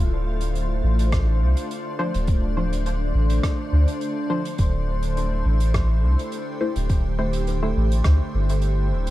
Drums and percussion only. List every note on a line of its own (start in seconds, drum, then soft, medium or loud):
0.41 closed hi-hat medium
0.55 closed hi-hat medium
0.99 closed hi-hat medium
1.12 kick loud
1.12 cross-stick loud
1.12 closed hi-hat medium
1.57 closed hi-hat medium
1.71 closed hi-hat medium
2.14 closed hi-hat medium
2.27 kick loud
2.27 closed hi-hat medium
2.73 closed hi-hat medium
2.86 closed hi-hat medium
3.30 closed hi-hat medium
3.43 kick loud
3.43 cross-stick medium
3.43 closed hi-hat medium
3.88 closed hi-hat medium
4.01 closed hi-hat medium
4.45 closed hi-hat medium
4.58 kick loud
4.58 closed hi-hat medium
5.03 closed hi-hat medium
5.17 closed hi-hat medium
5.60 closed hi-hat medium
5.74 kick loud
5.74 cross-stick loud
5.74 closed hi-hat medium
6.19 closed hi-hat medium
6.32 closed hi-hat medium
6.76 closed hi-hat medium
6.89 kick loud
6.89 closed hi-hat medium
7.33 closed hi-hat medium
7.47 closed hi-hat medium
7.92 closed hi-hat medium
8.04 kick loud
8.04 cross-stick medium
8.04 closed hi-hat medium
8.49 closed hi-hat medium
8.62 closed hi-hat medium
9.07 closed hi-hat medium